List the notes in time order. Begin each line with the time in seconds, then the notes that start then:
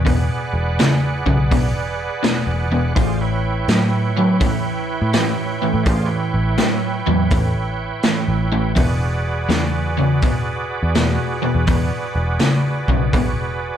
Already playing: E2
0.05 E2 B2 G#4 B4 D5 F#5, kick, open hi-hat
0.53 E1
0.79 E2 C#3, snare, open hi-hat
1.26 B1 E2 C#3, kick
1.51 E2 B2, kick, open hi-hat
1.74 E1
2.23 E2 B2, snare, open hi-hat
2.47 E1
2.72 E2 B2
2.95 A1 A2 E3 F4 G#4 C5 D5, kick, open hi-hat
3.21 E4 B4 C#5 G5
3.68 A2 F#3, snare, open hi-hat
4.17 A2 F#3
4.41 A1 A2 E3, kick, open hi-hat
5.02 A2
5.13 A2 E3, snare, open hi-hat
5.62 A2 E3
5.74 A2
5.83 A2 E3 F4 G#4 C5 D5, kick, open hi-hat
6.05 E4 B4 C#5 G5
6.34 A1
6.58 A2 F#3, snare, open hi-hat
7.07 E2 A2 F#3
7.31 A2 E3, kick, open hi-hat
7.55 A1
8.03 A2 E3, snare, open hi-hat
8.28 A1
8.52 A2 E3
8.75 E1 E2 B2 F#4 G#4 B4 D5, kick, open hi-hat
9.49 E2 C#3, snare, open hi-hat
9.97 E2 C#3
10.22 E1 E2 B2, kick, open hi-hat
10.83 E2
10.95 E2 B2, snare, open hi-hat
11.42 E2 B2
11.55 E2
11.66 E2 B2 F#4 G#4 B4 D5, kick, open hi-hat
12.15 E1
12.39 E2 C#3, snare, open hi-hat
12.88 B1 E2 C#3, kick
13.13 E2 B2, kick, open hi-hat
13.36 E1